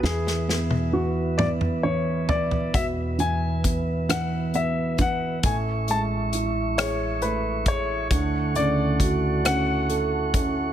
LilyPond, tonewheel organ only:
\new Staff \with { instrumentName = "Tonewheel organ" } { \time 6/8 \key e \mixolydian \tempo 4. = 45 << { e''2.~ | e''2. | <e'' cis'''>2. | <a' fis'' cis'''>2. | } \\ { b'2.~ | b'2. | e'2.~ | e'2. | } >> }